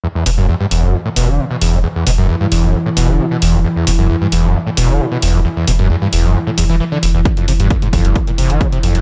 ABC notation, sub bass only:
X:1
M:4/4
L:1/16
Q:1/4=133
K:Em
V:1 name="Sub bass" clef=bass
z2 E,,, E,,, z2 E,,, E,,, z2 E,,, E,,, z2 E,,, E,,, | z2 E,,, E,,, z2 E,,, E,,, z2 E,,, E,,, z2 E,,, E,,, | z2 E,,, E,,, z2 E,,, E,,, z2 E,,, E,,, z2 E,,, E,,, | z2 E,,, E,,, z2 E,,, E,,, z2 E,,, E,,, z2 E,,, E,,, |
z2 =F,,, F,,, z2 F,,, F,,, z2 F,,, F,,, z2 F,,, F,,, |]